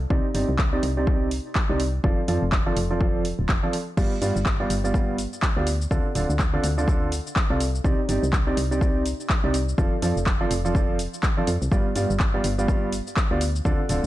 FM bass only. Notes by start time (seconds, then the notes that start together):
0.10 C2
0.34 G1
0.49 C2
0.83 C2
1.70 C2
2.04 F1
2.28 F2
2.42 F1
2.76 F1
3.39 D1
3.49 F1
3.97 G1
4.22 G2
4.36 G1
4.70 G1
5.57 D2
5.91 D2
6.15 D1
6.29 D2
6.64 D2
7.50 C2
7.84 C2
8.09 G1
8.23 C2
8.57 C2
9.44 C2
9.78 F1
10.02 F2
10.16 F1
10.51 F1
11.48 F2
11.62 C2
11.72 G1
11.96 G2
12.10 G1
12.44 G1
13.31 D2
13.65 D2
13.89 D1